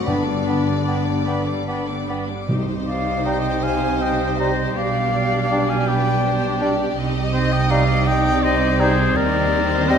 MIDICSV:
0, 0, Header, 1, 12, 480
1, 0, Start_track
1, 0, Key_signature, -3, "minor"
1, 0, Tempo, 808625
1, 37, Time_signature, 6, 3, 24, 8
1, 1476, Tempo, 772201
1, 1956, Tempo, 747198
1, 3876, Tempo, 728155
1, 6338, End_track
2, 0, Start_track
2, 0, Title_t, "Flute"
2, 0, Program_c, 0, 73
2, 37, Note_on_c, 0, 79, 38
2, 91, Note_off_c, 0, 79, 0
2, 279, Note_on_c, 0, 79, 32
2, 332, Note_off_c, 0, 79, 0
2, 515, Note_on_c, 0, 79, 36
2, 569, Note_off_c, 0, 79, 0
2, 752, Note_on_c, 0, 79, 39
2, 807, Note_off_c, 0, 79, 0
2, 999, Note_on_c, 0, 79, 34
2, 1053, Note_off_c, 0, 79, 0
2, 1248, Note_on_c, 0, 79, 33
2, 1301, Note_off_c, 0, 79, 0
2, 1716, Note_on_c, 0, 77, 62
2, 1956, Note_on_c, 0, 79, 61
2, 1966, Note_off_c, 0, 77, 0
2, 2194, Note_on_c, 0, 80, 73
2, 2204, Note_off_c, 0, 79, 0
2, 2439, Note_on_c, 0, 79, 66
2, 2449, Note_off_c, 0, 80, 0
2, 2675, Note_on_c, 0, 75, 58
2, 2685, Note_off_c, 0, 79, 0
2, 2913, Note_off_c, 0, 75, 0
2, 2917, Note_on_c, 0, 77, 73
2, 3504, Note_off_c, 0, 77, 0
2, 3510, Note_on_c, 0, 80, 69
2, 3629, Note_on_c, 0, 79, 81
2, 3639, Note_off_c, 0, 80, 0
2, 4355, Note_off_c, 0, 79, 0
2, 4594, Note_on_c, 0, 75, 81
2, 4716, Note_on_c, 0, 79, 88
2, 4726, Note_off_c, 0, 75, 0
2, 4837, Note_on_c, 0, 77, 92
2, 4846, Note_off_c, 0, 79, 0
2, 5073, Note_on_c, 0, 79, 97
2, 5083, Note_off_c, 0, 77, 0
2, 5315, Note_off_c, 0, 79, 0
2, 5319, Note_on_c, 0, 75, 85
2, 5555, Note_off_c, 0, 75, 0
2, 5560, Note_on_c, 0, 72, 80
2, 5797, Note_on_c, 0, 74, 98
2, 5807, Note_off_c, 0, 72, 0
2, 6282, Note_on_c, 0, 75, 97
2, 6291, Note_off_c, 0, 74, 0
2, 6338, Note_off_c, 0, 75, 0
2, 6338, End_track
3, 0, Start_track
3, 0, Title_t, "Oboe"
3, 0, Program_c, 1, 68
3, 32, Note_on_c, 1, 74, 40
3, 127, Note_off_c, 1, 74, 0
3, 269, Note_on_c, 1, 74, 33
3, 364, Note_off_c, 1, 74, 0
3, 501, Note_on_c, 1, 74, 34
3, 596, Note_off_c, 1, 74, 0
3, 747, Note_on_c, 1, 74, 36
3, 842, Note_off_c, 1, 74, 0
3, 994, Note_on_c, 1, 74, 33
3, 1089, Note_off_c, 1, 74, 0
3, 1238, Note_on_c, 1, 74, 31
3, 1333, Note_off_c, 1, 74, 0
3, 1714, Note_on_c, 1, 74, 52
3, 1951, Note_on_c, 1, 75, 52
3, 1961, Note_off_c, 1, 74, 0
3, 2195, Note_on_c, 1, 77, 65
3, 2205, Note_off_c, 1, 75, 0
3, 2445, Note_on_c, 1, 75, 58
3, 2455, Note_off_c, 1, 77, 0
3, 2687, Note_off_c, 1, 75, 0
3, 2694, Note_on_c, 1, 72, 54
3, 2927, Note_on_c, 1, 74, 66
3, 2936, Note_off_c, 1, 72, 0
3, 3522, Note_on_c, 1, 77, 60
3, 3532, Note_off_c, 1, 74, 0
3, 3643, Note_on_c, 1, 74, 76
3, 3653, Note_off_c, 1, 77, 0
3, 4362, Note_off_c, 1, 74, 0
3, 4593, Note_on_c, 1, 72, 69
3, 4720, Note_on_c, 1, 75, 74
3, 4730, Note_off_c, 1, 72, 0
3, 4839, Note_on_c, 1, 74, 75
3, 4849, Note_off_c, 1, 75, 0
3, 5081, Note_on_c, 1, 75, 84
3, 5091, Note_off_c, 1, 74, 0
3, 5316, Note_on_c, 1, 72, 72
3, 5326, Note_off_c, 1, 75, 0
3, 5558, Note_on_c, 1, 68, 76
3, 5568, Note_off_c, 1, 72, 0
3, 5802, Note_on_c, 1, 70, 87
3, 5812, Note_off_c, 1, 68, 0
3, 6273, Note_on_c, 1, 72, 82
3, 6282, Note_off_c, 1, 70, 0
3, 6338, Note_off_c, 1, 72, 0
3, 6338, End_track
4, 0, Start_track
4, 0, Title_t, "Violin section"
4, 0, Program_c, 2, 48
4, 26, Note_on_c, 2, 71, 35
4, 28, Note_on_c, 2, 83, 37
4, 143, Note_off_c, 2, 71, 0
4, 144, Note_off_c, 2, 83, 0
4, 146, Note_on_c, 2, 74, 32
4, 146, Note_on_c, 2, 86, 33
4, 271, Note_off_c, 2, 74, 0
4, 271, Note_off_c, 2, 86, 0
4, 271, Note_on_c, 2, 83, 33
4, 272, Note_on_c, 2, 71, 32
4, 388, Note_on_c, 2, 74, 36
4, 390, Note_on_c, 2, 86, 33
4, 392, Note_off_c, 2, 83, 0
4, 393, Note_off_c, 2, 71, 0
4, 502, Note_on_c, 2, 83, 35
4, 506, Note_on_c, 2, 71, 34
4, 510, Note_off_c, 2, 74, 0
4, 511, Note_off_c, 2, 86, 0
4, 618, Note_off_c, 2, 83, 0
4, 619, Note_off_c, 2, 71, 0
4, 625, Note_on_c, 2, 74, 30
4, 626, Note_on_c, 2, 86, 33
4, 747, Note_on_c, 2, 71, 34
4, 748, Note_off_c, 2, 74, 0
4, 748, Note_off_c, 2, 86, 0
4, 748, Note_on_c, 2, 83, 35
4, 866, Note_on_c, 2, 74, 33
4, 868, Note_on_c, 2, 86, 32
4, 870, Note_off_c, 2, 71, 0
4, 870, Note_off_c, 2, 83, 0
4, 988, Note_on_c, 2, 71, 33
4, 990, Note_on_c, 2, 83, 32
4, 991, Note_off_c, 2, 74, 0
4, 992, Note_off_c, 2, 86, 0
4, 1105, Note_off_c, 2, 71, 0
4, 1106, Note_off_c, 2, 83, 0
4, 1109, Note_on_c, 2, 74, 31
4, 1113, Note_on_c, 2, 86, 32
4, 1230, Note_on_c, 2, 71, 31
4, 1231, Note_on_c, 2, 83, 30
4, 1235, Note_off_c, 2, 74, 0
4, 1237, Note_off_c, 2, 86, 0
4, 1348, Note_on_c, 2, 74, 31
4, 1351, Note_on_c, 2, 86, 31
4, 1356, Note_off_c, 2, 71, 0
4, 1356, Note_off_c, 2, 83, 0
4, 1472, Note_off_c, 2, 74, 0
4, 1473, Note_off_c, 2, 86, 0
4, 2187, Note_on_c, 2, 72, 58
4, 2895, Note_off_c, 2, 72, 0
4, 2925, Note_on_c, 2, 74, 60
4, 3639, Note_off_c, 2, 74, 0
4, 3639, Note_on_c, 2, 71, 56
4, 3874, Note_on_c, 2, 72, 57
4, 3876, Note_off_c, 2, 71, 0
4, 4113, Note_off_c, 2, 72, 0
4, 4114, Note_on_c, 2, 74, 57
4, 4358, Note_off_c, 2, 74, 0
4, 4358, Note_on_c, 2, 75, 71
4, 5076, Note_off_c, 2, 75, 0
4, 5079, Note_on_c, 2, 74, 77
4, 5793, Note_on_c, 2, 72, 86
4, 5801, Note_off_c, 2, 74, 0
4, 6338, Note_off_c, 2, 72, 0
4, 6338, End_track
5, 0, Start_track
5, 0, Title_t, "Violin section"
5, 0, Program_c, 3, 48
5, 34, Note_on_c, 3, 74, 46
5, 1237, Note_off_c, 3, 74, 0
5, 1480, Note_on_c, 3, 72, 51
5, 2902, Note_off_c, 3, 72, 0
5, 2927, Note_on_c, 3, 67, 53
5, 5773, Note_off_c, 3, 67, 0
5, 5797, Note_on_c, 3, 67, 67
5, 6338, Note_off_c, 3, 67, 0
5, 6338, End_track
6, 0, Start_track
6, 0, Title_t, "Clarinet"
6, 0, Program_c, 4, 71
6, 43, Note_on_c, 4, 62, 59
6, 1218, Note_off_c, 4, 62, 0
6, 1954, Note_on_c, 4, 63, 51
6, 2039, Note_off_c, 4, 63, 0
6, 2683, Note_on_c, 4, 63, 51
6, 2768, Note_off_c, 4, 63, 0
6, 3404, Note_on_c, 4, 62, 60
6, 3486, Note_off_c, 4, 62, 0
6, 4111, Note_on_c, 4, 62, 60
6, 4198, Note_off_c, 4, 62, 0
6, 4836, Note_on_c, 4, 63, 64
6, 4920, Note_off_c, 4, 63, 0
6, 5558, Note_on_c, 4, 63, 66
6, 5642, Note_off_c, 4, 63, 0
6, 6280, Note_on_c, 4, 60, 80
6, 6338, Note_off_c, 4, 60, 0
6, 6338, End_track
7, 0, Start_track
7, 0, Title_t, "French horn section"
7, 0, Program_c, 5, 60
7, 37, Note_on_c, 5, 59, 48
7, 38, Note_on_c, 5, 62, 45
7, 1253, Note_off_c, 5, 62, 0
7, 1276, Note_off_c, 5, 59, 0
7, 1472, Note_on_c, 5, 63, 53
7, 1475, Note_on_c, 5, 55, 56
7, 2898, Note_off_c, 5, 63, 0
7, 2920, Note_on_c, 5, 62, 61
7, 4330, Note_off_c, 5, 62, 0
7, 4332, Note_off_c, 5, 55, 0
7, 4353, Note_on_c, 5, 55, 69
7, 4357, Note_on_c, 5, 63, 71
7, 5771, Note_off_c, 5, 63, 0
7, 5790, Note_on_c, 5, 60, 82
7, 6338, Note_off_c, 5, 55, 0
7, 6338, Note_off_c, 5, 60, 0
7, 6338, End_track
8, 0, Start_track
8, 0, Title_t, "Viola section"
8, 0, Program_c, 6, 48
8, 39, Note_on_c, 6, 59, 36
8, 40, Note_on_c, 6, 62, 37
8, 150, Note_off_c, 6, 59, 0
8, 151, Note_off_c, 6, 62, 0
8, 160, Note_on_c, 6, 55, 32
8, 160, Note_on_c, 6, 59, 33
8, 271, Note_off_c, 6, 59, 0
8, 277, Note_on_c, 6, 62, 33
8, 278, Note_off_c, 6, 55, 0
8, 278, Note_on_c, 6, 59, 34
8, 385, Note_off_c, 6, 59, 0
8, 392, Note_on_c, 6, 55, 34
8, 392, Note_on_c, 6, 59, 34
8, 396, Note_off_c, 6, 62, 0
8, 502, Note_off_c, 6, 59, 0
8, 509, Note_on_c, 6, 59, 34
8, 512, Note_off_c, 6, 55, 0
8, 512, Note_on_c, 6, 62, 33
8, 621, Note_off_c, 6, 59, 0
8, 623, Note_off_c, 6, 62, 0
8, 636, Note_on_c, 6, 55, 32
8, 636, Note_on_c, 6, 59, 33
8, 744, Note_off_c, 6, 59, 0
8, 750, Note_on_c, 6, 62, 34
8, 751, Note_on_c, 6, 59, 35
8, 753, Note_off_c, 6, 55, 0
8, 858, Note_off_c, 6, 59, 0
8, 865, Note_on_c, 6, 59, 33
8, 866, Note_on_c, 6, 55, 31
8, 871, Note_off_c, 6, 62, 0
8, 984, Note_off_c, 6, 59, 0
8, 991, Note_off_c, 6, 55, 0
8, 991, Note_on_c, 6, 59, 33
8, 992, Note_on_c, 6, 62, 32
8, 1106, Note_off_c, 6, 59, 0
8, 1107, Note_off_c, 6, 62, 0
8, 1113, Note_on_c, 6, 59, 31
8, 1114, Note_on_c, 6, 55, 32
8, 1233, Note_off_c, 6, 59, 0
8, 1238, Note_off_c, 6, 55, 0
8, 1240, Note_on_c, 6, 59, 30
8, 1242, Note_on_c, 6, 62, 31
8, 1358, Note_off_c, 6, 59, 0
8, 1361, Note_off_c, 6, 62, 0
8, 1363, Note_on_c, 6, 55, 31
8, 1366, Note_on_c, 6, 59, 33
8, 1472, Note_on_c, 6, 63, 43
8, 1472, Note_on_c, 6, 67, 48
8, 1479, Note_off_c, 6, 55, 0
8, 1481, Note_off_c, 6, 59, 0
8, 2898, Note_off_c, 6, 63, 0
8, 2924, Note_on_c, 6, 62, 46
8, 4331, Note_off_c, 6, 67, 0
8, 4332, Note_off_c, 6, 62, 0
8, 4359, Note_on_c, 6, 60, 58
8, 4359, Note_on_c, 6, 63, 55
8, 6338, Note_off_c, 6, 60, 0
8, 6338, Note_off_c, 6, 63, 0
8, 6338, End_track
9, 0, Start_track
9, 0, Title_t, "Bassoon"
9, 0, Program_c, 7, 70
9, 41, Note_on_c, 7, 59, 38
9, 136, Note_off_c, 7, 59, 0
9, 286, Note_on_c, 7, 59, 35
9, 381, Note_off_c, 7, 59, 0
9, 519, Note_on_c, 7, 59, 33
9, 614, Note_off_c, 7, 59, 0
9, 757, Note_on_c, 7, 59, 34
9, 852, Note_off_c, 7, 59, 0
9, 998, Note_on_c, 7, 59, 31
9, 1093, Note_off_c, 7, 59, 0
9, 1244, Note_on_c, 7, 59, 32
9, 1339, Note_off_c, 7, 59, 0
9, 1953, Note_on_c, 7, 55, 47
9, 2039, Note_off_c, 7, 55, 0
9, 2690, Note_on_c, 7, 55, 50
9, 2773, Note_off_c, 7, 55, 0
9, 3404, Note_on_c, 7, 55, 53
9, 3486, Note_off_c, 7, 55, 0
9, 4120, Note_on_c, 7, 55, 58
9, 4204, Note_off_c, 7, 55, 0
9, 4841, Note_on_c, 7, 55, 63
9, 4923, Note_off_c, 7, 55, 0
9, 5565, Note_on_c, 7, 55, 66
9, 5647, Note_off_c, 7, 55, 0
9, 6287, Note_on_c, 7, 55, 71
9, 6338, Note_off_c, 7, 55, 0
9, 6338, End_track
10, 0, Start_track
10, 0, Title_t, "Cello section"
10, 0, Program_c, 8, 48
10, 37, Note_on_c, 8, 50, 47
10, 1215, Note_off_c, 8, 50, 0
10, 1468, Note_on_c, 8, 48, 51
10, 2896, Note_off_c, 8, 48, 0
10, 2921, Note_on_c, 8, 47, 59
10, 4331, Note_off_c, 8, 47, 0
10, 4355, Note_on_c, 8, 48, 64
10, 5770, Note_off_c, 8, 48, 0
10, 5798, Note_on_c, 8, 51, 74
10, 6338, Note_off_c, 8, 51, 0
10, 6338, End_track
11, 0, Start_track
11, 0, Title_t, "Timpani"
11, 0, Program_c, 10, 47
11, 44, Note_on_c, 10, 43, 53
11, 731, Note_off_c, 10, 43, 0
11, 1477, Note_on_c, 10, 48, 65
11, 2174, Note_off_c, 10, 48, 0
11, 6338, End_track
12, 0, Start_track
12, 0, Title_t, "Double bass section"
12, 0, Program_c, 11, 48
12, 40, Note_on_c, 11, 31, 44
12, 1330, Note_off_c, 11, 31, 0
12, 1476, Note_on_c, 11, 36, 49
12, 2900, Note_off_c, 11, 36, 0
12, 2924, Note_on_c, 11, 35, 57
12, 4332, Note_off_c, 11, 35, 0
12, 4357, Note_on_c, 11, 36, 64
12, 5771, Note_off_c, 11, 36, 0
12, 5803, Note_on_c, 11, 39, 75
12, 6338, Note_off_c, 11, 39, 0
12, 6338, End_track
0, 0, End_of_file